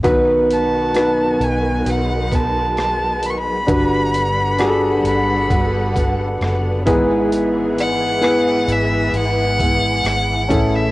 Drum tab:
HH |xxxxxxxx|xxxxxxxx|xxxxxxxx|
SD |--r---r-|--r---r-|--r---r-|
BD |o----o--|o---oo-o|-----o-o|